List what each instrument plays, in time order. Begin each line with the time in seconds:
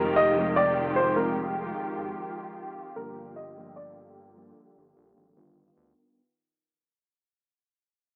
Already playing: analog synth bass F1, string section D#3 G#3 F4 G4, fm electric piano F3 G#3 C4 D#4 G4, grand piano A#4
0.16 grand piano D#5
0.36 fm electric piano F3 G#3 C4 D#4 G4
0.56 grand piano D5
0.96 grand piano C5
1.16 fm electric piano F3 G#3 C4 D#4 F4, grand piano A#4
1.77 analog synth bass G#1
1.97 analog synth bass G#1
2.96 analog synth bass G1, string section D3 A#3, fm electric piano F3 G3 A#3 D4 G4, grand piano A#4
3.36 grand piano D#5
3.56 fm electric piano F3 G3 A#3 D4 G4
3.76 grand piano D5
4.37 fm electric piano F3 G3 A#3 D4 G4
4.77 analog synth bass G1
4.97 analog synth bass A#1
5.17 analog synth bass G#1
5.36 analog synth bass G1, fm electric piano D#3 G3 B3 D4 F4, string section D#3 B3 F4
5.77 analog synth bass D2